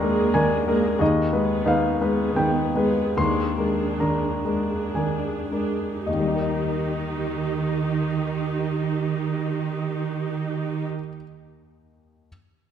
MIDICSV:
0, 0, Header, 1, 4, 480
1, 0, Start_track
1, 0, Key_signature, -3, "major"
1, 0, Tempo, 664452
1, 723, Time_signature, 3, 2, 24, 8
1, 1203, Tempo, 700117
1, 1683, Tempo, 817439
1, 2643, Tempo, 949367
1, 3123, Tempo, 1111111
1, 3603, Tempo, 1030928
1, 6700, End_track
2, 0, Start_track
2, 0, Title_t, "Grand piano"
2, 0, Program_c, 0, 0
2, 0, Control_c, 0, 64, 127
2, 0, Note_on_c, 0, 39, 53
2, 0, Note_on_c, 0, 56, 35
2, 0, Note_on_c, 0, 62, 40
2, 0, Note_on_c, 0, 70, 42
2, 0, Note_on_c, 0, 82, 51
2, 0, Note_on_c, 0, 84, 66
2, 8, Note_off_c, 0, 56, 0
2, 8, Note_on_c, 0, 56, 36
2, 10, Note_off_c, 0, 70, 0
2, 10, Note_on_c, 0, 70, 41
2, 218, Note_off_c, 0, 82, 0
2, 225, Note_off_c, 0, 56, 0
2, 226, Note_off_c, 0, 70, 0
2, 245, Note_off_c, 0, 62, 0
2, 245, Note_on_c, 0, 62, 36
2, 246, Note_on_c, 0, 80, 53
2, 250, Note_on_c, 0, 70, 39
2, 462, Note_off_c, 0, 62, 0
2, 465, Note_off_c, 0, 70, 0
2, 487, Note_on_c, 0, 56, 41
2, 491, Note_on_c, 0, 70, 42
2, 694, Note_off_c, 0, 80, 0
2, 699, Note_off_c, 0, 56, 0
2, 702, Note_off_c, 0, 70, 0
2, 714, Note_off_c, 0, 39, 0
2, 714, Note_on_c, 0, 39, 50
2, 730, Note_on_c, 0, 75, 55
2, 737, Control_c, 0, 64, 0
2, 745, Note_off_c, 0, 84, 0
2, 865, Control_c, 0, 64, 127
2, 957, Note_on_c, 0, 56, 36
2, 961, Note_on_c, 0, 71, 37
2, 1177, Note_off_c, 0, 56, 0
2, 1178, Note_off_c, 0, 75, 0
2, 1179, Note_off_c, 0, 71, 0
2, 1198, Note_on_c, 0, 63, 41
2, 1199, Note_on_c, 0, 71, 40
2, 1210, Note_on_c, 0, 77, 57
2, 1412, Note_off_c, 0, 63, 0
2, 1413, Note_off_c, 0, 71, 0
2, 1440, Note_on_c, 0, 56, 36
2, 1444, Note_on_c, 0, 71, 41
2, 1659, Note_off_c, 0, 56, 0
2, 1659, Note_off_c, 0, 77, 0
2, 1662, Note_off_c, 0, 71, 0
2, 1682, Note_on_c, 0, 79, 53
2, 1683, Note_on_c, 0, 63, 33
2, 1686, Note_on_c, 0, 71, 38
2, 1890, Note_off_c, 0, 63, 0
2, 1892, Note_off_c, 0, 71, 0
2, 1911, Note_on_c, 0, 56, 35
2, 1917, Note_on_c, 0, 71, 36
2, 2130, Note_off_c, 0, 39, 0
2, 2133, Note_off_c, 0, 56, 0
2, 2134, Note_off_c, 0, 79, 0
2, 2136, Note_off_c, 0, 71, 0
2, 2154, Note_on_c, 0, 39, 45
2, 2159, Note_on_c, 0, 84, 60
2, 2172, Control_c, 0, 64, 0
2, 2276, Control_c, 0, 64, 127
2, 2393, Note_on_c, 0, 56, 28
2, 2397, Note_on_c, 0, 70, 33
2, 2616, Note_off_c, 0, 56, 0
2, 2619, Note_off_c, 0, 70, 0
2, 2620, Note_off_c, 0, 84, 0
2, 2626, Note_off_c, 0, 39, 0
2, 2643, Note_on_c, 0, 70, 33
2, 2643, Note_on_c, 0, 82, 40
2, 2644, Note_on_c, 0, 62, 30
2, 2851, Note_off_c, 0, 62, 0
2, 2851, Note_off_c, 0, 70, 0
2, 2871, Note_on_c, 0, 56, 27
2, 2871, Note_on_c, 0, 70, 32
2, 3103, Note_off_c, 0, 56, 0
2, 3103, Note_off_c, 0, 70, 0
2, 3103, Note_off_c, 0, 82, 0
2, 3123, Note_on_c, 0, 80, 33
2, 3127, Note_on_c, 0, 62, 23
2, 3130, Note_on_c, 0, 70, 27
2, 3348, Note_off_c, 0, 62, 0
2, 3349, Note_off_c, 0, 70, 0
2, 3366, Note_on_c, 0, 56, 22
2, 3369, Note_on_c, 0, 70, 25
2, 3586, Note_off_c, 0, 80, 0
2, 3587, Note_off_c, 0, 56, 0
2, 3588, Note_off_c, 0, 70, 0
2, 3605, Note_on_c, 0, 75, 32
2, 3606, Note_on_c, 0, 39, 25
2, 3617, Control_c, 0, 64, 0
2, 3637, Note_on_c, 0, 51, 25
2, 3669, Note_on_c, 0, 55, 24
2, 3703, Note_on_c, 0, 63, 26
2, 3737, Note_on_c, 0, 70, 23
2, 3741, Control_c, 0, 64, 127
2, 3761, Note_off_c, 0, 75, 0
2, 3768, Note_on_c, 0, 75, 25
2, 5839, Note_off_c, 0, 39, 0
2, 5870, Note_off_c, 0, 51, 0
2, 5902, Note_off_c, 0, 55, 0
2, 5936, Note_off_c, 0, 63, 0
2, 5970, Note_off_c, 0, 70, 0
2, 6001, Note_off_c, 0, 75, 0
2, 6501, Control_c, 0, 64, 0
2, 6700, End_track
3, 0, Start_track
3, 0, Title_t, "Viola section"
3, 0, Program_c, 1, 48
3, 12, Note_on_c, 1, 58, 42
3, 12, Note_on_c, 1, 68, 39
3, 482, Note_off_c, 1, 58, 0
3, 482, Note_off_c, 1, 68, 0
3, 493, Note_on_c, 1, 68, 38
3, 495, Note_on_c, 1, 58, 42
3, 722, Note_off_c, 1, 68, 0
3, 723, Note_off_c, 1, 58, 0
3, 965, Note_on_c, 1, 68, 31
3, 966, Note_on_c, 1, 59, 39
3, 1431, Note_off_c, 1, 59, 0
3, 1431, Note_off_c, 1, 68, 0
3, 1442, Note_on_c, 1, 68, 36
3, 1446, Note_on_c, 1, 59, 37
3, 1906, Note_off_c, 1, 68, 0
3, 1908, Note_off_c, 1, 59, 0
3, 1917, Note_on_c, 1, 59, 36
3, 1918, Note_on_c, 1, 68, 37
3, 2155, Note_off_c, 1, 59, 0
3, 2155, Note_off_c, 1, 68, 0
3, 2163, Note_on_c, 1, 62, 33
3, 2164, Note_on_c, 1, 68, 35
3, 2394, Note_off_c, 1, 62, 0
3, 2396, Note_off_c, 1, 68, 0
3, 2401, Note_on_c, 1, 62, 30
3, 2404, Note_on_c, 1, 68, 28
3, 2863, Note_off_c, 1, 62, 0
3, 2864, Note_off_c, 1, 68, 0
3, 2875, Note_on_c, 1, 62, 25
3, 2876, Note_on_c, 1, 68, 29
3, 3356, Note_off_c, 1, 62, 0
3, 3356, Note_off_c, 1, 68, 0
3, 3363, Note_on_c, 1, 62, 24
3, 3364, Note_on_c, 1, 68, 22
3, 3598, Note_off_c, 1, 62, 0
3, 3598, Note_off_c, 1, 68, 0
3, 3604, Note_on_c, 1, 63, 31
3, 3604, Note_on_c, 1, 67, 33
3, 5837, Note_off_c, 1, 63, 0
3, 5837, Note_off_c, 1, 67, 0
3, 6700, End_track
4, 0, Start_track
4, 0, Title_t, "Cello section"
4, 0, Program_c, 2, 48
4, 0, Note_on_c, 2, 51, 51
4, 172, Note_off_c, 2, 51, 0
4, 250, Note_on_c, 2, 51, 57
4, 649, Note_off_c, 2, 51, 0
4, 723, Note_on_c, 2, 51, 57
4, 1125, Note_off_c, 2, 51, 0
4, 1201, Note_on_c, 2, 51, 51
4, 1604, Note_off_c, 2, 51, 0
4, 1680, Note_on_c, 2, 51, 51
4, 2084, Note_off_c, 2, 51, 0
4, 2159, Note_on_c, 2, 51, 48
4, 2570, Note_off_c, 2, 51, 0
4, 2643, Note_on_c, 2, 51, 40
4, 3050, Note_off_c, 2, 51, 0
4, 3124, Note_on_c, 2, 51, 36
4, 3540, Note_off_c, 2, 51, 0
4, 3604, Note_on_c, 2, 51, 32
4, 5838, Note_off_c, 2, 51, 0
4, 6700, End_track
0, 0, End_of_file